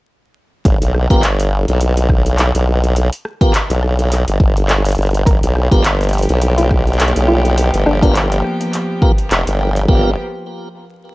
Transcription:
0.65 G1, kick, closed hi-hat
0.82 B1, closed hi-hat
0.94 cross-stick
1.10 G1 B3 F4 G4 A#4, kick, closed hi-hat
1.23 clap, closed hi-hat
1.40 closed hi-hat
1.68 B1, closed hi-hat
1.81 closed hi-hat
1.97 closed hi-hat
2.09 kick, cross-stick
2.26 closed hi-hat
2.38 clap, closed hi-hat
2.55 B1, closed hi-hat
2.84 closed hi-hat
2.96 closed hi-hat
3.12 closed hi-hat
3.25 cross-stick
3.41 B3 F4 G4 A#4, kick, closed hi-hat
3.54 clap, closed hi-hat
3.70 B1, closed hi-hat
3.83 cross-stick
3.99 closed hi-hat
4.12 clap, closed hi-hat
4.28 G1, closed hi-hat
4.40 G1, kick
4.57 closed hi-hat
4.69 clap, closed hi-hat
4.85 closed hi-hat
4.89 closed hi-hat
4.92 closed hi-hat
4.95 G1, closed hi-hat
4.98 closed hi-hat
5.02 closed hi-hat
5.06 closed hi-hat
5.10 closed hi-hat
5.14 closed hi-hat
5.26 G1 F3 A#3 B3 G4 A#4, kick, closed hi-hat
5.43 B1, closed hi-hat
5.56 cross-stick
5.71 G1 B3 F4 G4 A#4, kick, closed hi-hat
5.84 clap, closed hi-hat
6.01 closed hi-hat
6.03 closed hi-hat
6.09 closed hi-hat
6.13 closed hi-hat
6.18 closed hi-hat
6.23 closed hi-hat
6.29 B1, closed hi-hat
6.42 closed hi-hat
6.58 F4, closed hi-hat
6.71 kick, cross-stick
6.87 closed hi-hat
6.93 closed hi-hat
7.00 clap, closed hi-hat
7.08 closed hi-hat
7.16 B1, closed hi-hat
7.28 F4
7.45 closed hi-hat
7.58 closed hi-hat
7.74 G1, closed hi-hat
7.86 G1 D4, cross-stick
8.02 B3 D4 F4 G4 A#4, kick, closed hi-hat
8.15 clap, closed hi-hat
8.32 closed hi-hat
8.44 cross-stick
8.61 closed hi-hat
8.73 clap, closed hi-hat
9.02 B3 F4 G4 A#4, kick
9.18 closed hi-hat
9.31 F1, clap, closed hi-hat
9.47 G1, closed hi-hat
9.76 closed hi-hat
9.88 G1 F3 A#3 B3 F4 G4 A#4, kick

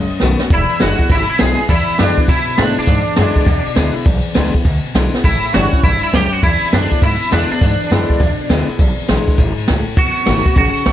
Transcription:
Already playing: F#2 D#5
0.09 muted upright bass stroke, ride
0.20 B1 D#3 A3 B3 F#4, snare
0.39 B3 F#4, snare
0.50 E1 E2 E4, kick, crash
0.69 muted upright bass stroke, ride
0.79 F#1 D3 G#3 B3 E4 F#4, snare, ride
0.99 B3 E4, kick, ride
1.09 G#1 B2 E4, kick, ride
1.29 E4, muted upright bass stroke, ride
1.39 B1 D3 G#3 B3 E4 G#4, snare, ride
1.58 B3 E4, ride
1.69 E2 E4, kick, ride
1.88 muted upright bass stroke, ride
1.98 F#2 D3 G#3 B3 D4 E4, snare, ride
2.17 B3 E4, muted upright bass stroke, kick, ride
2.28 G#2 B2 E4, kick, ride
2.47 muted upright bass stroke, ride
2.57 A2 D3 G#3 B3 D4 E4, snare, ride
2.76 B3 D4 E4, muted upright bass stroke, ride
2.87 E2 G#2, kick, ride
3.06 muted upright bass stroke, ride
3.16 F#2 D3 G#3 B3 E4, snare, ride
3.36 kick, ride
3.46 E2 B2, kick, ride
3.66 muted upright bass stroke, ride
3.75 D2 D3 G#3 B3 E4, snare, ride
3.94 B3 E4, muted upright bass stroke, ride
4.05 B1 E2, kick, ride
4.25 muted upright bass stroke, ride
4.34 C#2 D3 G#3 B3 E4, snare, ride
4.54 E4, kick, ride
4.65 D2 B2, kick, ride
4.84 muted upright bass stroke, ride
4.94 B1 D3 G#3 B3 E4, snare, ride
5.14 B3 E4, snare
5.24 A1 A2 E4, kick, ride
5.43 muted upright bass stroke, ride
5.53 G1 E3 G3 C#4 E4 F#4, snare, ride
5.73 C#4 E4, kick, ride
5.84 A1 G2 E4, kick, ride
6.03 E4, muted upright bass stroke, ride
6.13 C#2 F#2 G4, snare, ride
6.33 F#4, muted upright bass stroke, ride
6.43 E2 E4, kick, ride
6.63 muted upright bass stroke, ride
6.72 F#2 D3 G#3 B3 D4 E4, snare, ride
6.91 B3 E4, kick, ride
7.02 G#2 B2 E4, kick, ride
7.21 muted upright bass stroke, ride
7.31 E2 D3 G#3 B3 D4 E4, snare, ride
7.51 B3 D4 E4, muted upright bass stroke, ride
7.61 E2 G#2, kick, ride
7.80 muted upright bass stroke, ride
7.91 F#2 D3 G#3 B3 E4, snare, ride
8.10 kick, ride
8.20 E2 B2, kick, ride
8.39 muted upright bass stroke, ride
8.49 D2 D3 G#3 B3 E4, snare, ride
8.68 B3 E4, muted upright bass stroke, ride
8.79 B1 E2, kick, ride
8.98 muted upright bass stroke, ride
9.08 A1 D3 G#3 B3 E4, snare, ride
9.28 muted upright bass stroke, kick, ride
9.38 G#1 G#2, kick, ride
9.57 muted upright bass stroke, ride
9.68 C#2 A2, snare, ride
9.87 muted upright bass stroke, ride
9.97 B1 B2 F#4, kick, ride
10.16 ride
10.26 G#1 D#3 A3 B3 F#4, snare, ride
10.45 B3 F#4, kick, ride
10.56 A1 C#3 F#4, kick, ride
10.75 muted upright bass stroke, ride
10.85 B1 B2, snare, ride

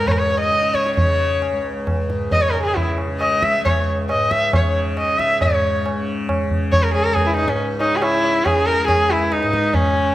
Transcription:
Already playing: C#2 C#3
0.00 G#2
0.07 C#5, tabla na, tabla ge
0.12 A#4
0.18 C#5
0.30 tabla te
0.41 D#5
0.50 C#3, tabla te
0.63 tabla te
0.74 C#5, tabla ke
0.86 tabla te
0.97 C#5, tabla tin, tabla ge
1.02 C#3
1.42 tabla na
1.52 C#2
1.87 tabla na, tabla ge
2.04 G#2
2.10 tabla te
2.31 D#5, tabla tin, tabla ge
2.42 C#5
2.52 A#4, tabla na
2.57 C#3
2.63 G#4
2.75 E4, tabla tin, tabla ge
2.98 tabla na
3.07 C#3
3.21 D#5, tabla na
3.42 E5, tabla ke
3.61 C#2
3.65 C#5, tabla na, tabla ge
4.09 G#2 D#5, tabla na
4.31 E5, tabla ke
4.53 C#5, tabla na, tabla ge
4.61 C#3
4.97 D#5, tabla na
5.13 C#3
5.19 E5, tabla ke
5.41 G#2 C#5, tabla tin, tabla ge
5.86 tabla na
5.93 C#3
6.29 tabla na, tabla ge
6.43 C#3
6.50 tabla ge
6.72 C#5, tabla tin, tabla ge
6.83 A#4
6.93 C#2 G#4, tabla na
7.04 A#4
7.14 G#4, tabla tin, tabla ge
7.25 E4 G#4
7.36 D#4, tabla na
7.43 G#2
7.48 C#4, tabla ke
7.58 tabla tin
7.80 D#4, tabla na
7.93 C#3 G#4
8.02 E4, tabla na
8.24 tabla na
8.43 C#3 G#4, tabla na, tabla ge
8.66 A#4, tabla te
8.87 G#4, tabla na, tabla ge
8.94 C#2
9.10 E4, tabla te
9.32 D#4, tabla te
9.42 G#2, tabla te
9.53 tabla ke
9.64 tabla te
9.74 C#4, tabla tin, tabla ge
9.93 C#3

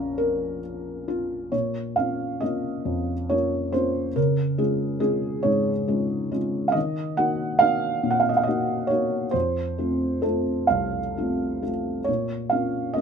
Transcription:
Already playing: A#1 A#2 F3 C#4 C#5 F5 A#5
0.18 A#4
1.08 F4
1.52 A#2 C#5
1.96 A#3 C#4 F4 F5
2.40 A#3 C#4 F4 D#5
2.85 F2
3.29 A#3 C#4 F4 C#5
3.72 A#3 C#4 F4 C5
4.16 C#3 A#4
4.58 G#3 C#4 F4 G#4
5.00 G#3 C#4 F4 G#4
5.43 G#2 C#5
5.88 G#3 C#4 F4
6.31 G#3 C#4 F4
6.68 F5
6.72 D#3 D#5
7.17 A#3 D#4 F#4 F#5
7.59 A#3 D#4 F#4 F5
8.03 A#2
8.11 F#5
8.20 F5
8.29 D#5
8.37 F5
8.43 A#3 D#4 D#5
8.47 F#4
8.87 A#3 D#4 C#5
8.91 F#4
9.31 F2 C5
9.78 A3 C4 F4
10.22 A3 C4 F4 A4
10.67 C2 F5
11.17 A3 C4 F4
11.62 A3 C4 F4
12.04 A#2 C#5
12.50 A#3 C#4 F4 F5
12.94 A#3 C#4 F4 D#5

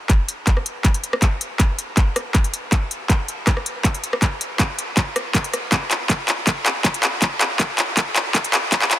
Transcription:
0.10 kick, clap, closed hi-hat
0.28 closed hi-hat
0.47 kick, cross-stick, clap, closed hi-hat
0.57 cross-stick
0.66 closed hi-hat
0.85 kick, clap, closed hi-hat
0.94 closed hi-hat
1.04 closed hi-hat
1.13 cross-stick
1.22 kick, clap, closed hi-hat
1.41 closed hi-hat
1.60 kick, clap, closed hi-hat
1.79 closed hi-hat
1.97 kick, clap, closed hi-hat
2.16 cross-stick, closed hi-hat
2.35 kick, clap, closed hi-hat
2.44 closed hi-hat
2.54 closed hi-hat
2.72 kick, clap, closed hi-hat
2.91 closed hi-hat
3.10 kick, clap, closed hi-hat
3.28 closed hi-hat
3.47 kick, cross-stick, clap, closed hi-hat
3.57 cross-stick
3.66 closed hi-hat
3.84 kick, clap, closed hi-hat
3.94 closed hi-hat
4.04 closed hi-hat
4.13 cross-stick
4.22 kick, clap, closed hi-hat
4.41 closed hi-hat
4.59 kick, clap, closed hi-hat
4.79 closed hi-hat
4.97 kick, clap, closed hi-hat
5.16 cross-stick, closed hi-hat
5.34 kick, clap, closed hi-hat
5.44 closed hi-hat
5.53 cross-stick, closed hi-hat
5.72 kick, clap, closed hi-hat
5.91 clap, closed hi-hat
6.09 kick, clap, closed hi-hat
6.28 clap, closed hi-hat
6.47 kick, clap, closed hi-hat
6.66 clap, closed hi-hat
6.84 kick, clap, closed hi-hat
6.94 closed hi-hat
7.03 clap, closed hi-hat
7.22 kick, clap, closed hi-hat
7.41 clap, closed hi-hat
7.59 kick, clap, closed hi-hat
7.78 clap, closed hi-hat
7.97 kick, clap, closed hi-hat
8.16 clap, closed hi-hat
8.35 kick, clap, closed hi-hat
8.44 closed hi-hat
8.54 clap, closed hi-hat
8.72 kick, clap, closed hi-hat
8.82 clap
8.91 clap, closed hi-hat

